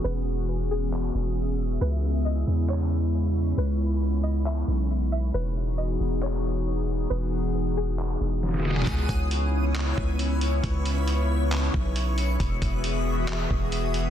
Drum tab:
HH |--------------------------------|--------------------------------|--------------------------------|--------------------------------|
CP |----------------x---------------|----------------x---------------|----------------x---------------|----------------x---------------|
SD |--------------------------------|--------------------------------|--------------------------------|--------------------------------|
BD |--------------------------------|--------------------------------|--------------------------------|--------------------------------|

HH |--------------------------------|x---x---x-------x-------x---x---|x---x---x-------x-------x---x---|x---x---x-------x-------x---x---|
CP |----------------x---------------|----------------x---------------|----------------x---------------|----------------x---------------|
SD |------------------------oooooooo|--------------------------------|--------------------------------|--------------------------------|
BD |--------------------------------|o---o---------------o-----------|o-------------------o-----------|o---o---------------o-----------|